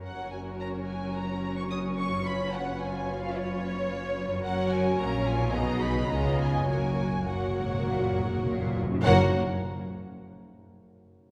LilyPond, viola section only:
\new Staff \with { instrumentName = "Viola section" } { \time 4/4 \key fis \major \tempo 4 = 108 << { fis'1 | eis'1 | fis'4 fis'8 eis'8 dis'4 eis'4 | fis'4 fis'2~ fis'8 r8 |
fis'8 r2. r8 | } \\ { cis'1~ | cis'1 | cis'4 cis'4 b4 b4 | ais4 ais2~ ais8 r8 |
ais8 r2. r8 | } >> }